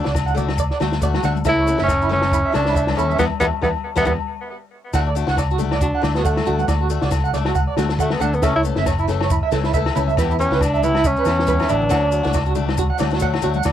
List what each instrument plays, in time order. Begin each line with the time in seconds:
0.04 fingered electric bass C#2, steel-string acoustic guitar D4 F#4, clean electric guitar D5, snare, low conga, maracas
0.15 kick, snare, low agogo, maracas
0.26 clean electric guitar F#5, maracas
0.34 steel-string acoustic guitar A3 D4 F#4, clean electric guitar D5, high conga, low conga, maracas
0.48 muted clean electric guitar stroke, snare, high conga, low agogo
0.58 clean electric guitar D5, kick, maracas
0.71 clean electric guitar D5, snare
0.80 fingered electric bass D2, steel-string acoustic guitar A3 D4 F#4, clean electric guitar F#4, snare, high conga, low agogo, maracas
0.92 snare, maracas
1.02 steel-string acoustic guitar A3 F#4, clean electric guitar D5, muted steel-string acoustic guitar stroke, kick, maracas
1.14 clean electric guitar F#4, snare, high conga, low agogo
1.23 fingered electric bass D2, steel-string acoustic guitar A3 D4 F#4, clean electric guitar F#5, snare, low conga, maracas
1.35 high conga, maracas
1.45 fingered electric bass C#2, steel-string acoustic guitar E3 A3 C#4 A4, tenor saxophone E4, clean electric guitar E5, kick, snare, low agogo, maracas
1.58 clean electric guitar C#5
1.66 steel-string acoustic guitar E3 A3 C#4 A4, maracas
1.77 fingered electric bass F#1, steel-string acoustic guitar A3 C#4 A4, clean electric guitar E5, snare, low conga, maracas
1.83 tenor saxophone C#4
1.88 kick, snare, low agogo, maracas
2.02 clean electric guitar E4, maracas
2.09 steel-string acoustic guitar E3 A3 C#4 A4, tenor saxophone C#4, snare, high conga, low conga
2.22 snare, high conga, low agogo
2.32 clean electric guitar E4, kick, maracas
2.46 clean electric guitar E5
2.52 fingered electric bass C#2, steel-string acoustic guitar E3 A3 C#4 A4, tenor saxophone D4, clean electric guitar C#5, snare, high conga, low agogo, maracas
2.65 clean electric guitar E4, snare, maracas
2.73 steel-string acoustic guitar E3 A3 C#4 A4, clean electric guitar E5, kick, maracas
2.87 snare, high conga, low agogo
2.95 fingered electric bass D#2, steel-string acoustic guitar E3 C#4 A4, tenor saxophone C#4, clean electric guitar E4, muted steel-string acoustic guitar stroke, low conga, maracas
3.10 clean electric guitar E5, high conga, maracas
3.18 fingered electric bass E2, steel-string acoustic guitar G3 B3 E4, tenor saxophone B3, clean electric guitar G4 B4 E5, kick, snare, high conga, low agogo, maracas
3.40 fingered electric bass E2, steel-string acoustic guitar G3 B3 E4, tenor saxophone B3, clean electric guitar G4 B4 E5, kick, snare, high conga, low agogo, maracas
3.61 fingered electric bass E2, steel-string acoustic guitar G3 B3 E4, tenor saxophone B3, clean electric guitar G4 B4 E5, kick, snare, high conga, low agogo, maracas
3.96 fingered electric bass E2, steel-string acoustic guitar G3 B3 E4, tenor saxophone B3, clean electric guitar G4 B4 E5, kick, snare, high conga, low agogo, maracas
4.05 fingered electric bass E2, steel-string acoustic guitar G3 B3 E4, tenor saxophone B3, clean electric guitar G4 B4 E5, kick, snare, high conga, low agogo, maracas
4.93 fingered electric bass D2, steel-string acoustic guitar A3 D4 F#4, clean electric guitar F#5, kick, snare, low agogo, maracas
5.07 clean electric guitar D5
5.15 steel-string acoustic guitar A3 D4 F#4, maracas
5.27 fingered electric bass C#2, steel-string acoustic guitar D4 F#4, clean electric guitar F#5, snare, maracas
5.37 clean electric guitar D5, kick, snare, low agogo, maracas
5.51 clean electric guitar F#4, maracas
5.58 steel-string acoustic guitar A3 D4 F#4, high conga, low conga, maracas
5.71 clean electric guitar D5, snare, high conga, low agogo
5.81 tenor saxophone D4, clean electric guitar F#4, kick, maracas
5.95 clean electric guitar F#5
6.02 fingered electric bass D2, steel-string acoustic guitar A3 D4 F#4, clean electric guitar D5, snare, high conga, low agogo, maracas
6.15 tenor saxophone B3, clean electric guitar F#4, snare, maracas
6.24 tenor saxophone A3, steel-string acoustic guitar A3 D4 F#4, clean electric guitar F#5, kick, maracas
6.37 snare, high conga, low agogo
6.45 fingered electric bass D2, steel-string acoustic guitar A3 D4 F#4, clean electric guitar F#4, low conga, maracas
6.59 clean electric guitar F#5, high conga, maracas
6.68 fingered electric bass D2, clean electric guitar D5, kick, snare, low agogo, maracas
6.81 clean electric guitar F#4
6.90 steel-string acoustic guitar A3 D4 F#4, maracas
7.02 fingered electric bass C#2, steel-string acoustic guitar F#4, clean electric guitar D5, muted steel-string acoustic guitar stroke, snare, low conga, maracas
7.11 kick, snare, low agogo, maracas
7.24 clean electric guitar F#5, maracas
7.33 steel-string acoustic guitar A3 D4, clean electric guitar D5, snare, high conga, low conga, maracas
7.38 steel-string acoustic guitar F#4
7.45 clean electric guitar F#4, snare, high conga, low agogo
7.55 clean electric guitar F#5, kick, maracas
7.67 clean electric guitar D5
7.77 fingered electric bass D2, steel-string acoustic guitar A3 D4 F#4, clean electric guitar F#4, snare, high conga, low agogo, maracas
7.89 snare, maracas
7.99 steel-string acoustic guitar A3 D4 F#4, tenor saxophone A3, clean electric guitar F#5, kick, maracas
8.10 tenor saxophone B3, snare, high conga, low agogo
8.19 fingered electric bass D2, steel-string acoustic guitar A3 D4, tenor saxophone D4, clean electric guitar F#5, muted steel-string acoustic guitar stroke, low conga, maracas
8.33 tenor saxophone B3, high conga, maracas
8.42 fingered electric bass C#2, steel-string acoustic guitar E3 A3 C#4 A4, tenor saxophone C#4, clean electric guitar E5, kick, snare, low agogo, maracas
8.55 tenor saxophone E4, clean electric guitar C#5
8.63 steel-string acoustic guitar E3 A3 C#4 A4, maracas
8.76 fingered electric bass F#1, steel-string acoustic guitar A3 C#4 A4, clean electric guitar E5, snare, low conga
8.86 clean electric guitar C#5, kick, snare, low agogo, maracas
8.98 clean electric guitar E4, maracas
9.07 steel-string acoustic guitar E3 A3 C#4 A4, snare, high conga, low conga, maracas
9.20 clean electric guitar C#5, snare, high conga, low agogo
9.30 clean electric guitar E4, kick, maracas
9.43 clean electric guitar E5
9.51 fingered electric bass C#2, steel-string acoustic guitar E3 A3 C#4 A4, clean electric guitar A4, snare, high conga, low agogo, maracas
9.64 clean electric guitar E4, snare, maracas
9.74 steel-string acoustic guitar E3 A3 A4, clean electric guitar E5, muted steel-string acoustic guitar stroke, kick, maracas
9.86 snare, high conga, low agogo
9.95 fingered electric bass C#2, steel-string acoustic guitar E3 A3 C#4 A4, clean electric guitar E4, low conga, maracas
10.08 clean electric guitar E5, high conga, maracas
10.17 fingered electric bass E2, steel-string acoustic guitar E3 B3 E4 G4, clean electric guitar B4, kick, snare, low agogo, maracas
10.30 clean electric guitar E4, maracas
10.39 steel-string acoustic guitar E3 B3 E4 G4, tenor saxophone C#4, maracas
10.51 fingered electric bass C#2, steel-string acoustic guitar B3 E4 G4, clean electric guitar B4, snare, low conga
10.61 tenor saxophone D4, kick, snare, low agogo, maracas
10.74 clean electric guitar E5, maracas
10.82 steel-string acoustic guitar E3 B3 E4 G4, tenor saxophone E4, clean electric guitar B4, high conga, low conga, maracas
10.94 clean electric guitar E4, snare, high conga, low agogo
11.04 tenor saxophone C#4, clean electric guitar E5, kick, maracas
11.17 clean electric guitar B4, maracas
11.25 fingered electric bass E2, steel-string acoustic guitar E3 B3 E4 G4, clean electric guitar E4, snare, low agogo, maracas
11.38 snare, high conga
11.47 steel-string acoustic guitar E3 B3 E4 G4, clean electric guitar B4, kick, high conga, maracas
11.59 clean electric guitar E4, snare, high conga, low agogo, maracas
11.67 fingered electric bass A1, steel-string acoustic guitar E3 B3 E4 G4, tenor saxophone D4, clean electric guitar E5, low conga, maracas
11.82 low conga
11.89 fingered electric bass D2, steel-string acoustic guitar F#3 A3 D4 F#4, clean electric guitar F#5, kick, snare, low agogo, maracas
12.03 clean electric guitar D5
12.12 steel-string acoustic guitar F#3 F#4, muted steel-string acoustic guitar stroke, maracas
12.23 fingered electric bass C#2, steel-string acoustic guitar A3 D4 F#4, clean electric guitar D5, snare, low conga, maracas
12.33 clean electric guitar D5, kick, snare, low agogo, maracas
12.46 clean electric guitar F#4, maracas
12.55 steel-string acoustic guitar A3 D4 F#4, muted steel-string acoustic guitar stroke, high conga, low conga, maracas
12.68 muted clean electric guitar stroke, snare, high conga, low agogo
12.78 clean electric guitar F#4, kick, maracas
12.90 clean electric guitar F#5
12.98 fingered electric bass D2, steel-string acoustic guitar F#3 A3 D4 F#4, clean electric guitar D5, snare, high conga, low agogo, maracas
13.11 clean electric guitar F#4, snare, maracas
13.20 steel-string acoustic guitar F#3 A3 D4 F#4, clean electric guitar F#5, kick, maracas
13.34 snare, high conga, low agogo
13.42 fingered electric bass D2, steel-string acoustic guitar F#3 A3 D4 F#4, clean electric guitar F#4, low conga, maracas
13.54 clean electric guitar F#5, high conga, maracas
13.63 fingered electric bass D2, clean electric guitar D5, kick, snare, low agogo, maracas